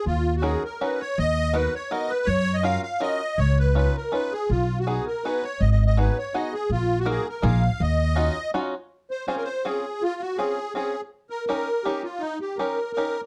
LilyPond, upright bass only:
\new Staff \with { instrumentName = "Upright bass" } { \clef bass \time 3/4 \key ees \minor \tempo 4 = 163 ees,2 r4 | dis,2 r4 | ges,2 r4 | des,2 r4 |
b,,2 r4 | aes,,2 r4 | bes,,2 bes,,4 | ees,2 r4 |
\key des \major r2. | r2. | r2. | r2. | }